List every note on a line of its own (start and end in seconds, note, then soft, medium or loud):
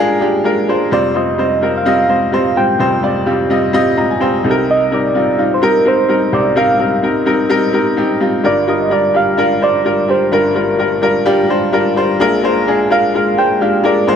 0.00 0.88 A#1 medium
0.00 0.88 A#2 medium
0.00 0.20 G#3 loud
0.00 0.21 D4 medium
0.00 0.21 F4 medium
0.00 0.22 G4 medium
0.00 0.94 G#4 loud
0.00 0.45 A#4 medium
0.20 0.40 G#3 medium
0.20 0.40 D4 medium
0.20 0.40 F4 medium
0.20 0.40 G4 medium
0.44 0.64 G#3 medium
0.44 0.64 D4 medium
0.44 0.64 F4 medium
0.44 0.64 A#4 medium
0.68 0.87 G#3 medium
0.68 0.87 D4 medium
0.68 0.88 F4 medium
0.68 0.88 C5 medium
0.91 2.76 F1 soft
0.91 2.76 F2 medium
0.91 1.11 G3 medium
0.91 1.11 C4 medium
0.91 1.11 F4 medium
0.91 1.11 C5 medium
0.91 1.18 D5 medium
1.15 1.34 G3 medium
1.15 1.34 C4 medium
1.15 1.34 F4 medium
1.15 1.34 C5 medium
1.15 1.79 D#5 medium
1.38 1.57 G3 medium
1.38 1.58 C4 medium
1.38 1.58 F4 medium
1.38 1.58 C5 medium
1.61 1.81 G3 medium
1.61 1.81 C4 medium
1.61 1.81 F4 medium
1.61 1.82 A#4 medium
1.78 2.59 F5 loud
1.85 2.05 G3 medium
1.85 2.05 C4 medium
1.85 2.05 F4 medium
1.85 2.05 D#5 medium
2.08 2.28 G3 medium
2.08 2.28 C4 medium
2.08 2.28 F4 medium
2.08 2.28 C5 medium
2.32 2.52 G3 medium
2.32 2.52 C4 medium
2.32 2.52 F4 medium
2.32 2.52 C5 medium
2.56 2.75 G3 medium
2.56 2.75 C4 medium
2.56 2.76 F4 medium
2.56 2.76 C5 medium
2.56 3.51 G5 loud
2.79 4.41 F1 soft
2.79 4.41 F2 medium
2.79 2.99 G3 medium
2.79 2.99 C4 medium
2.79 2.99 F4 medium
2.79 2.99 C5 medium
3.03 3.22 G3 medium
3.03 3.22 C4 medium
3.03 3.22 F4 medium
3.03 3.23 D5 medium
3.26 3.45 G3 medium
3.26 3.46 C4 medium
3.26 3.46 F4 medium
3.26 3.46 G4 medium
3.50 3.69 G3 medium
3.50 3.69 C4 medium
3.50 3.70 F4 medium
3.50 3.70 D#5 medium
3.73 3.93 G3 medium
3.73 3.93 C4 medium
3.73 3.93 F4 medium
3.73 3.93 D#5 loud
3.97 4.16 G3 medium
3.97 4.17 C4 medium
3.97 4.17 F4 medium
3.97 4.17 D#5 medium
3.97 4.10 A#5 medium
4.10 4.20 G#5 medium
4.20 4.40 G3 medium
4.20 4.40 C4 medium
4.20 4.40 F4 medium
4.20 4.40 C5 medium
4.20 4.65 G5 medium
4.44 6.29 C2 medium
4.44 6.29 C3 medium
4.44 4.83 G3 medium
4.44 4.83 C4 medium
4.44 4.84 D#4 medium
4.44 4.51 A4 medium
4.51 4.87 A#4 medium
4.71 4.91 D#5 medium
4.91 5.10 G3 medium
4.91 5.10 C4 medium
4.91 5.11 D#4 medium
4.91 5.11 A#4 medium
4.91 5.56 D5 medium
5.14 5.34 G3 medium
5.14 5.34 C4 medium
5.14 5.34 D#4 medium
5.14 5.34 F4 medium
5.38 5.57 G3 medium
5.38 5.57 C4 medium
5.38 5.58 D#4 medium
5.38 5.58 F4 medium
5.54 5.66 C5 medium
5.62 5.81 G3 medium
5.62 5.81 C4 medium
5.62 5.81 D#4 medium
5.62 5.81 A#4 loud
5.62 5.89 A#4 medium
5.85 6.04 G3 medium
5.85 6.04 C4 medium
5.85 6.05 D#4 medium
5.85 6.05 A#4 medium
5.85 6.36 C5 loud
6.08 6.28 G3 medium
6.08 6.28 C4 medium
6.08 6.28 D#4 medium
6.08 6.28 A#4 medium
6.32 8.17 C2 medium
6.32 8.17 C3 medium
6.32 6.51 G3 medium
6.32 6.52 C4 medium
6.32 6.52 D#4 medium
6.32 6.52 C5 medium
6.32 6.57 D5 medium
6.56 6.75 G3 medium
6.56 6.75 C4 medium
6.56 6.75 D#4 medium
6.56 6.75 A#4 medium
6.56 7.01 F5 loud
6.79 6.98 G3 medium
6.79 6.98 C4 medium
6.79 6.98 D#4 medium
6.79 6.99 A#4 medium
7.02 7.22 G3 medium
7.02 7.22 C4 medium
7.02 7.22 D#4 medium
7.02 7.22 A#4 medium
7.25 7.45 G3 medium
7.25 7.45 C4 medium
7.25 7.45 D#4 medium
7.25 7.46 A#4 medium
7.49 7.69 G3 loud
7.49 7.69 C4 medium
7.49 7.69 D#4 medium
7.49 7.69 A#4 loud
7.73 7.92 G3 medium
7.73 7.92 C4 medium
7.73 7.93 D#4 medium
7.73 7.93 A#4 medium
7.97 8.16 G3 medium
7.97 8.16 C4 medium
7.97 8.16 D#4 medium
7.97 8.16 G4 medium
8.20 8.39 G3 medium
8.20 8.39 C4 medium
8.20 8.40 D#4 medium
8.20 8.40 F4 medium
8.43 10.28 G1 medium
8.43 10.28 G2 medium
8.43 8.63 G3 medium
8.43 8.63 D4 medium
8.43 8.63 F4 medium
8.43 8.63 A#4 medium
8.43 8.67 D5 medium
8.67 8.86 G3 medium
8.67 8.86 D4 medium
8.67 8.87 F4 medium
8.67 8.87 A#4 medium
8.67 8.94 D#5 medium
8.90 9.09 G3 medium
8.90 9.10 D4 medium
8.90 9.10 F4 medium
8.90 9.10 A#4 medium
8.90 9.18 D5 medium
9.14 9.33 G3 medium
9.14 9.33 D4 medium
9.14 9.34 F4 medium
9.14 9.34 G4 medium
9.14 9.65 F5 loud
9.37 9.57 G3 medium
9.37 9.57 D4 medium
9.37 9.57 F4 medium
9.37 9.57 A#4 medium
9.61 9.80 G3 medium
9.61 9.80 D4 medium
9.61 9.81 F4 medium
9.61 9.81 C5 medium
9.61 10.12 D5 loud
9.84 10.04 G3 medium
9.84 10.04 D4 medium
9.84 10.04 F4 medium
9.84 10.04 A#4 medium
10.08 10.27 G3 medium
10.08 10.27 D4 medium
10.08 10.28 F4 medium
10.08 10.28 G4 medium
10.08 10.33 C5 medium
10.32 12.16 G1 medium
10.32 12.16 G2 medium
10.32 10.51 G3 medium
10.32 10.51 D4 medium
10.32 10.51 F4 medium
10.32 10.51 A#4 medium
10.32 11.70 A#4 loud
10.55 10.74 G3 medium
10.55 10.74 D4 medium
10.55 10.74 F4 medium
10.55 10.75 A#4 medium
10.78 10.98 G3 medium
10.78 10.98 D4 medium
10.78 10.98 F4 medium
10.78 10.98 A#4 medium
11.02 11.21 G3 medium
11.02 11.21 D4 medium
11.02 11.21 F4 medium
11.02 11.21 A#4 medium
11.26 11.45 G3 loud
11.26 11.45 D4 loud
11.26 11.45 F4 loud
11.26 11.45 G4 loud
11.49 11.68 G3 medium
11.49 11.68 D4 medium
11.49 11.69 F4 medium
11.49 11.69 C5 medium
11.73 11.92 G3 medium
11.73 11.92 D4 medium
11.73 11.92 F4 medium
11.73 11.92 A#4 medium
11.96 12.15 G3 medium
11.96 12.15 D4 medium
11.96 12.16 F4 medium
11.96 12.16 C5 medium
12.20 14.04 A#1 medium
12.20 14.04 A#2 medium
12.20 12.39 G#3 loud
12.20 12.39 D4 medium
12.20 12.39 F4 medium
12.20 12.39 A#4 loud
12.43 12.62 G#3 medium
12.43 12.62 D4 medium
12.43 12.63 F4 medium
12.43 12.63 C5 medium
12.67 12.86 G#3 medium
12.67 12.86 D4 medium
12.67 12.86 F4 medium
12.67 12.86 G#4 medium
12.91 13.09 G#3 loud
12.91 13.09 D4 medium
12.91 13.10 F4 medium
12.91 13.10 A#4 loud
12.91 13.13 F5 loud
13.14 13.33 G#3 medium
13.14 13.33 D4 medium
13.14 13.33 F4 medium
13.14 13.34 A#4 medium
13.14 13.40 F5 medium
13.37 13.56 G#3 medium
13.37 13.56 D4 medium
13.37 13.56 F4 medium
13.37 13.57 C5 medium
13.37 13.61 G5 loud
13.61 13.79 G#3 medium
13.61 13.80 D4 medium
13.61 13.80 F4 medium
13.61 13.80 G4 medium
13.61 13.83 F5 medium
13.84 14.03 G#3 medium
13.84 14.03 D4 medium
13.84 14.03 F4 medium
13.84 14.03 A#4 medium
13.84 14.16 D5 loud
14.07 14.16 A#1 medium
14.07 14.16 A#2 medium
14.07 14.16 G#3 medium
14.07 14.16 D4 medium
14.07 14.16 F4 medium
14.07 14.16 C5 loud